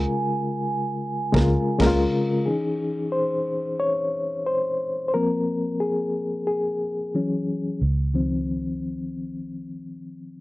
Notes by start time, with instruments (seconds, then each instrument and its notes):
Already playing: reed electric piano C#3 G#3 F4 A#4, vibraphone G#5
1.32 fingered electric bass C#2, reed electric piano C#3 G#3 A#4, kick
1.36 reed electric piano F4, snare
1.78 fingered electric bass C#2, reed electric piano C#3 G#3 A#4, kick, snare, crash
1.86 reed electric piano F4
2.46 reed electric piano E3 C#4 D#4 G#4
3.12 reed electric piano C5
3.80 reed electric piano C#5
4.46 reed electric piano C5
5.08 reed electric piano C5
5.14 reed electric piano F3 A#3 C4 A#4
5.80 reed electric piano G#4
6.47 reed electric piano G#4
7.15 reed electric piano E3 F#3 C#4
7.82 fingered electric bass C#2
8.14 reed electric piano D#3 F3 C4